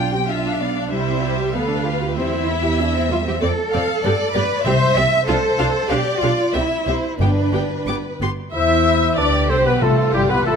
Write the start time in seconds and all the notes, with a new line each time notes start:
Already playing: B1 D4 F4 G5
0.12 C4 G4
0.28 D4 F4 E5 F5
0.43 D4
0.60 B3 D5
0.76 D4
0.91 C2 G3 E4 C5 E5
1.07 C4
1.23 E4 G4
1.39 G4
1.54 D2 B3 A4 B4 F5
1.70 D4
1.85 F4 G4
2.02 F4 G4
2.17 E2 G3 C4 E4 C5 E5
2.33 C4
2.47 E4 E5
2.65 G4
2.80 D4 E4
2.95 C4 E4
3.11 G3 F4
3.26 C4 G4
3.41 F2 C4 A4 D5
3.72 F2 C4 A4 D5 F5
4.03 G2 B3 G4 D5
4.34 G2 B3 G4 B4 D5
4.64 C2 C3 C4 G4 C5 E5
4.96 C2 C4 G4 E5
5.27 C2 D4 F4 A4 C5 F5
5.59 C2 D4 F4 F5
5.90 B1 D4 G4 D5 F5
6.22 B1 D4 F4 G4 F5
6.54 C2 C4 E4 G4 E5
6.87 C2 C4 G4 C5 E5
7.19 G1 G2 B3 D4 G4 B4 G5
7.53 G1 B3 G4 G5
7.88 G1 B3 G4 D6
8.21 G1 B3 G4 C6
8.53 E2 E4 C5 E5
9.18 D2 D4 G4 B4 D5
9.49 C2 C4 A4 C5
9.66 B1 B3 G4 B4
9.81 A1 C3 A3 F4 A4
10.14 G1 G3 E4 G4
10.29 B1 B3 G4 B4
10.45 A1 A3 E4 F4 A4